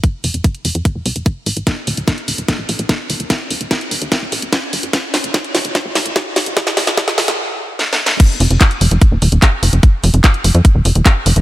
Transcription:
<<
  \new Staff \with { instrumentName = "Analog synth bass" } { \clef bass \time 4/4 \tempo 4 = 147 r8 f,,16 f,,16 r8 f,,16 f,16 r16 f,,16 c,16 f,,16 r8 a,,16 a,,16 | r8 ees,,16 ees,,16 r8 ees,,16 ees,,16 r16 bes,,16 bes,,16 bes,,16 r8 ees,,16 ees,,16 | r8 ees,,16 ees,,16 r8 ees,,16 ees,16 r16 ees,,16 bes,,16 ees,,16 r8 g,,16 g,,16 | r8 ees,,16 ees,,16 r8 ees,,16 ees,,16 r16 bes,,16 bes,,16 bes,,16 r8 ees,,16 ees,,16 |
r8 ees,,16 ees,,16 r8 ees,,16 ees,16 r2 | r8 f,,16 f,,16 r8 f,,16 f,,16 r16 ees,,16 ees,,16 ees,,16 r8 f,,16 f,,16 | r8 f,,16 f,,16 r8 f,,16 f,16 r16 ees,,16 f,,16 ees,,16 r8 f,,16 f,,16 | }
  \new DrumStaff \with { instrumentName = "Drums" } \drummode { \time 4/4 <hh bd>8 hho16 hh16 <hh bd>16 hh16 hho16 hh16 <hh bd>8 hho16 hh16 <hh bd>8 hho16 hh16 | <hh bd sn>8 hho16 hh16 <hh bd sn>16 hh16 hho16 hh16 <hh bd sn>8 hho16 hh16 <hh bd sn>8 hho16 hh16 | <hh bd sn>8 hho16 hh16 <hh bd sn>16 hh16 hho16 hh16 <hh bd sn>8 hho16 hh16 <hh bd sn>8 hho16 hh16 | <hh bd sn>8 <hho sn>16 hh16 <hh bd sn>16 hh16 <hho sn>16 hh16 <hh bd sn>8 <hho sn>16 hh16 <hh bd sn>8 <hho sn>16 hh16 |
<hh bd sn>16 <hh sn>16 <hho sn>16 <hh sn>16 <hh bd sn>16 <hh sn>16 <hho sn>16 <hh sn>16 r4 \tuplet 3/2 { sn8 sn8 sn8 } | <cymc hh bd>8 hho16 hh16 <hc hh bd>16 hh16 hho16 hh16 <hh bd>8 hho16 hh16 <hc hh bd>8 hho16 hh16 | <hh bd>8 hho16 hh16 <hc hh bd>16 hh16 hho16 hh16 <hh bd>8 hho16 hh16 <hc hh bd>8 hho16 hh16 | }
>>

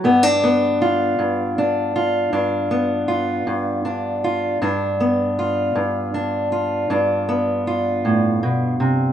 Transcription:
\new Staff \with { instrumentName = "Steel-string acoustic guitar" } { \time 12/8 \key g \major \tempo 4. = 53 << { b16 d'16 b8 f'4 d'8 f'8 d'8 b8 f'4 d'8 f'8 | d'8 b8 f'4 d'8 f'8 d'8 b8 f'2 | } \\ { g,4. g,4. g,4. g,4. | g,4. g,4. g,4. a,8 b,8 c8 | } >> }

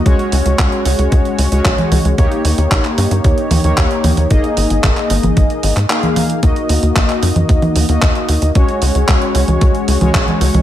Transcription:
<<
  \new Staff \with { instrumentName = "Analog polysynth" } { \time 4/4 \key ees \minor \tempo 4 = 113 <aes des' ges' des''>2~ <aes des' ges' des''>8. <aes des' ges' des''>4~ <aes des' ges' des''>16 | <bes ees' g' des''>2~ <bes ees' g' des''>8. <bes ees' g' des''>4~ <bes ees' g' des''>16 | <bes ees' aes' ees''>2~ <bes ees' aes' ees''>8. r16 <bes ees' aes' f''>4 | <bes ees' ges' ees''>2~ <bes ees' ges' ees''>8. <bes ees' ges' ees''>4~ <bes ees' ges' ees''>16 |
<aes des' ges' des''>2~ <aes des' ges' des''>8. <aes des' ges' des''>4~ <aes des' ges' des''>16 | }
  \new Staff \with { instrumentName = "Analog synth bass" } { \clef bass \time 4/4 \key ees \minor des,16 r16 des,16 des,16 des,16 r16 des,16 des,16 des,16 r16 des,16 des,16 ces,16 r16 des,16 des,16 | ees,16 r16 ees,16 ees,16 bes,,16 r16 g,16 g,16 ees,16 r16 ees,16 ees,16 ees,16 r16 ees,16 ees,16 | aes,,16 r16 aes,,16 aes,,16 aes,,16 r16 aes,,16 aes,,16 aes,,16 r16 aes,,16 aes,16 r4 | ees,16 r16 ees,16 ees,16 bes,,16 r16 ges,16 ges,16 ees,16 r16 ees,16 ees,16 ees,16 r16 ees,16 ees,16 |
des,16 r16 des,16 des,16 des,16 r16 des,16 des,16 des,16 r16 des,16 des,16 ces,16 r16 des,16 des,16 | }
  \new DrumStaff \with { instrumentName = "Drums" } \drummode { \time 4/4 <hh bd>16 hh16 hho16 hh16 <hc hh bd>16 hh16 hho16 hh16 <hh bd>16 hh16 hho16 hh16 <hc hh bd>16 <cgho hh>16 <cgho hho>16 hh16 | <hh bd>16 hh16 hho16 hh16 <hc hh bd>16 <hc hh>16 hho16 hh16 <hh bd>16 hh16 <cgho hho>16 hh16 <hc hh bd>16 hh16 <cgho hho>16 hh16 | <hh bd>16 hh16 hho16 hh16 <hc hh bd>16 <hc hh>16 hho16 <cgho hh>16 <hh bd>16 hh16 hho16 <hc hh>16 <hc hh>16 <cgho hh>16 <cgho hho>16 hh16 | <hh bd>16 hh16 hho16 hh16 <hc hh bd>16 <hc hh>16 hho16 <cgho hh>16 <hh bd>16 <cgho hh>16 hho16 hh16 <hc hh bd>16 hh16 hho16 hh16 |
<hh bd>16 hh16 hho16 hh16 <hc hh bd>16 hh16 hho16 <cgho hh>16 <hh bd>16 hh16 hho16 <cgho hh>16 <hc hh bd>16 <cgho hh>16 hho16 <cgho hh>16 | }
>>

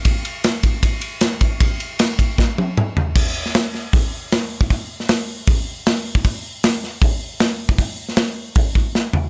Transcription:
\new DrumStaff \with { instrumentName = "Drums" } \drummode { \time 4/4 \tempo 4 = 155 <bd cymr>8 cymr8 <cymr sn>8 <bd cymr>8 <bd cymr>8 cymr8 <cymr sn>8 <bd cymr>8 | <bd cymr>8 cymr8 <cymr sn>8 <bd cymr>8 <bd sn>8 tommh8 toml8 tomfh8 | <cymc bd>8. sn16 <hho sn>8 sn8 <hho bd>4 <hho sn>8. bd16 | <hho bd>8. sn16 <hho sn>4 <hho bd>4 <hho sn>8. bd16 |
<hho bd>4 <hho sn>8 sn8 <hho bd>4 <hho sn>8. bd16 | <hho bd>8. sn16 <hho sn>4 <hho bd>8 bd8 sn8 tomfh8 | }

